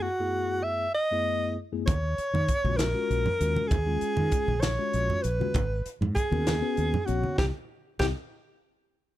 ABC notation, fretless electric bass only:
X:1
M:6/8
L:1/16
Q:3/8=65
K:D#phr
V:1 name="Fretless electric bass" clef=bass
z12 | D,,2 z D, z A,,,2 z A,,, z D,, z | D,,2 z D, z A,,,2 z A,,, z A,,, z | G,,,2 z G,, z D,,2 z D,, z A,,, z |
=C,, z3 C,, z6 z |]